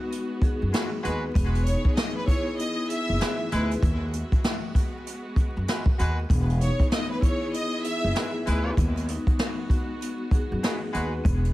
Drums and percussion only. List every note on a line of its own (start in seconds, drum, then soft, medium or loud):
0.12 closed hi-hat medium
0.42 kick loud
0.42 closed hi-hat medium
0.74 cross-stick medium
0.74 snare loud
0.74 closed hi-hat medium
1.05 closed hi-hat medium
1.35 kick loud
1.35 closed hi-hat medium
1.55 closed hi-hat medium
1.66 closed hi-hat medium
1.85 kick medium
1.97 cross-stick loud
1.97 snare loud
1.97 closed hi-hat medium
2.28 kick medium
2.28 closed hi-hat medium
2.59 closed hi-hat medium
2.90 closed hi-hat medium
3.21 cross-stick medium
3.21 snare loud
3.21 closed hi-hat loud
3.52 closed hi-hat medium
3.71 closed hi-hat medium
3.83 kick loud
3.83 closed hi-hat loud
4.13 closed hi-hat medium
4.32 kick medium
4.32 closed hi-hat medium
4.44 cross-stick loud
4.44 snare loud
4.44 closed hi-hat medium
4.75 kick medium
4.75 closed hi-hat medium
5.07 closed hi-hat medium
5.36 kick loud
5.36 closed hi-hat medium
5.68 cross-stick medium
5.68 snare loud
5.68 closed hi-hat loud
5.86 kick loud
5.99 closed hi-hat medium
6.30 kick loud
6.30 closed hi-hat medium
6.50 closed hi-hat medium
6.61 closed hi-hat medium
6.80 kick medium
6.80 closed hi-hat medium
6.91 cross-stick loud
6.91 snare loud
6.91 closed hi-hat medium
7.22 kick medium
7.22 closed hi-hat medium
7.54 closed hi-hat medium
7.84 closed hi-hat medium
8.15 cross-stick medium
8.15 snare loud
8.15 closed hi-hat loud
8.46 closed hi-hat medium
8.77 kick loud
8.77 closed hi-hat loud
8.97 closed hi-hat medium
9.08 closed hi-hat medium
9.27 kick loud
9.27 closed hi-hat medium
9.39 cross-stick loud
9.39 snare loud
9.39 closed hi-hat medium
9.70 kick medium
9.70 closed hi-hat medium
10.02 closed hi-hat medium
10.31 kick loud
10.31 closed hi-hat medium
10.63 cross-stick medium
10.63 snare loud
10.63 closed hi-hat loud
10.94 closed hi-hat medium
11.25 kick loud
11.25 closed hi-hat medium
11.45 closed hi-hat medium